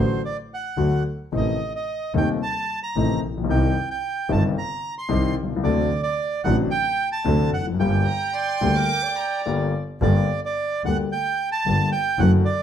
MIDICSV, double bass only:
0, 0, Header, 1, 2, 480
1, 0, Start_track
1, 0, Key_signature, -2, "minor"
1, 0, Tempo, 542005
1, 1171, Time_signature, 4, 2, 24, 8
1, 7395, Tempo, 547945
1, 11141, End_track
2, 0, Start_track
2, 0, Title_t, "Double bass"
2, 0, Program_c, 0, 43
2, 0, Note_on_c, 0, 33, 100
2, 155, Note_off_c, 0, 33, 0
2, 681, Note_on_c, 0, 38, 72
2, 887, Note_off_c, 0, 38, 0
2, 1176, Note_on_c, 0, 33, 93
2, 1377, Note_off_c, 0, 33, 0
2, 1897, Note_on_c, 0, 39, 90
2, 2098, Note_off_c, 0, 39, 0
2, 2620, Note_on_c, 0, 33, 86
2, 2819, Note_off_c, 0, 33, 0
2, 2856, Note_on_c, 0, 34, 55
2, 3085, Note_off_c, 0, 34, 0
2, 3091, Note_on_c, 0, 36, 95
2, 3294, Note_off_c, 0, 36, 0
2, 3808, Note_on_c, 0, 31, 99
2, 4007, Note_off_c, 0, 31, 0
2, 4513, Note_on_c, 0, 36, 81
2, 4716, Note_off_c, 0, 36, 0
2, 4751, Note_on_c, 0, 36, 60
2, 4987, Note_off_c, 0, 36, 0
2, 4992, Note_on_c, 0, 38, 95
2, 5194, Note_off_c, 0, 38, 0
2, 5709, Note_on_c, 0, 33, 106
2, 5912, Note_off_c, 0, 33, 0
2, 6423, Note_on_c, 0, 38, 96
2, 6630, Note_off_c, 0, 38, 0
2, 6670, Note_on_c, 0, 29, 59
2, 6907, Note_off_c, 0, 29, 0
2, 6912, Note_on_c, 0, 31, 99
2, 7115, Note_off_c, 0, 31, 0
2, 7629, Note_on_c, 0, 38, 92
2, 7834, Note_off_c, 0, 38, 0
2, 8850, Note_on_c, 0, 31, 113
2, 9054, Note_off_c, 0, 31, 0
2, 9572, Note_on_c, 0, 38, 73
2, 9773, Note_off_c, 0, 38, 0
2, 10290, Note_on_c, 0, 31, 72
2, 10489, Note_off_c, 0, 31, 0
2, 10758, Note_on_c, 0, 30, 114
2, 10958, Note_off_c, 0, 30, 0
2, 11141, End_track
0, 0, End_of_file